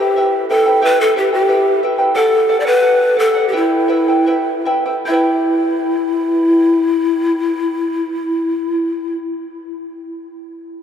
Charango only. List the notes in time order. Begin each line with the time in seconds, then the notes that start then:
0.00 E4 B4 G5
0.16 E4 B4 E5 G5
0.49 E4 B4 E5 G5
0.66 E4 B4 G5
0.81 E4 G4 B4 E5 G5
1.16 E4 B4 E5 G5
1.33 E4 B4 G5
1.48 E4 B4 E5 G5
1.83 E4 B4 E5 G5
1.98 E4 B4 G5
2.15 A4 D5 F#5
2.49 A4 D5 F#5
2.65 D5 F#5
2.81 A4 D5 F#5
3.16 A4 D5 F#5
3.35 D5 F#5
3.52 E4 G4 B4 E5 G5
3.88 E4 B4 E5 G5
4.08 E4 B4 G5
4.26 E4 B4 E5 G5
4.65 E4 B4 E5 G5
4.86 E4 B4 G5
5.05 G4 E5
5.09 E4 B4 G5